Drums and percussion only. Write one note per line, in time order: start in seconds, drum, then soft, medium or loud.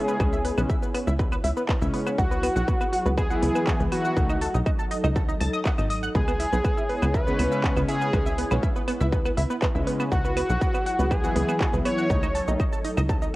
0.08 shaker medium
0.20 kick loud
0.20 claves medium
0.20 shaker medium
0.33 shaker medium
0.45 open hi-hat loud
0.58 claves medium
0.58 shaker medium
0.70 kick loud
0.70 shaker medium
0.83 shaker medium
0.94 open hi-hat loud
0.94 claves soft
1.07 shaker medium
1.19 kick loud
1.19 shaker medium
1.32 claves medium
1.32 shaker medium
1.44 open hi-hat loud
1.57 shaker medium
1.69 kick loud
1.69 clap loud
1.69 claves medium
1.69 shaker medium
1.82 shaker medium
1.94 open hi-hat loud
2.07 claves medium
2.07 shaker medium
2.18 kick loud
2.18 shaker medium
2.31 shaker medium
2.43 open hi-hat loud
2.43 claves medium
2.56 shaker medium
2.68 kick loud
2.68 shaker medium
2.81 claves medium
2.81 shaker medium
2.93 open hi-hat loud
3.06 shaker medium
3.18 kick loud
3.18 claves medium
3.18 shaker medium
3.31 shaker medium
3.42 open hi-hat loud
3.55 claves medium
3.55 shaker medium
3.67 kick loud
3.67 clap loud
3.67 shaker medium
3.80 shaker medium
3.92 open hi-hat loud
3.92 claves soft
4.05 shaker medium
4.17 kick loud
4.17 shaker medium
4.30 claves medium
4.30 shaker medium
4.42 open hi-hat loud
4.54 shaker medium
4.66 kick loud
4.66 claves medium
4.66 shaker medium
4.79 shaker medium
4.91 open hi-hat loud
5.04 claves medium
5.04 shaker medium
5.16 kick loud
5.16 shaker medium
5.29 shaker medium
5.41 open hi-hat loud
5.41 claves medium
5.54 shaker medium
5.65 kick loud
5.65 clap loud
5.65 shaker medium
5.78 claves medium
5.78 shaker medium
5.90 open hi-hat loud
6.03 shaker medium
6.15 kick loud
6.15 shaker medium
6.28 claves medium
6.28 shaker medium
6.40 open hi-hat loud
6.53 shaker medium
6.65 kick loud
6.65 claves medium
6.65 shaker medium
6.78 shaker medium
6.90 open hi-hat loud
7.02 claves medium
7.02 shaker medium
7.14 kick loud
7.14 shaker medium
7.27 shaker medium
7.39 open hi-hat loud
7.39 claves medium
7.52 shaker medium
7.64 kick loud
7.64 clap loud
7.64 shaker medium
7.77 claves medium
7.77 shaker medium
7.89 open hi-hat medium
8.02 shaker medium
8.13 kick loud
8.13 claves medium
8.13 shaker medium
8.26 shaker medium
8.38 open hi-hat loud
8.51 claves medium
8.51 shaker medium
8.63 kick loud
8.63 shaker medium
8.76 shaker medium
8.88 open hi-hat medium
8.88 claves medium
9.01 shaker medium
9.13 kick loud
9.13 shaker medium
9.26 claves medium
9.26 shaker medium
9.37 open hi-hat loud
9.50 shaker medium
9.62 kick loud
9.62 clap loud
9.62 claves medium
9.62 shaker medium
9.75 shaker medium
9.87 open hi-hat medium
10.00 claves medium
10.00 shaker medium
10.12 kick loud
10.12 shaker medium
10.25 shaker medium
10.37 open hi-hat loud
10.37 claves medium
10.50 shaker medium
10.61 kick loud
10.61 shaker medium
10.74 claves medium
10.74 shaker medium
10.86 open hi-hat medium
10.99 shaker medium
11.11 kick loud
11.11 claves medium
11.11 shaker medium
11.24 shaker medium
11.36 open hi-hat loud
11.49 claves medium
11.49 shaker medium
11.61 kick loud
11.61 clap loud
11.61 shaker medium
11.73 shaker medium
11.85 open hi-hat medium
11.85 claves medium
11.98 shaker medium
12.10 kick loud
12.10 shaker medium
12.23 claves medium
12.23 shaker medium
12.35 open hi-hat loud
12.48 shaker medium
12.60 kick loud
12.60 claves medium
12.60 shaker medium
12.73 shaker medium
12.85 open hi-hat medium
12.97 claves medium
12.97 shaker medium
13.09 kick loud
13.09 shaker medium
13.22 shaker medium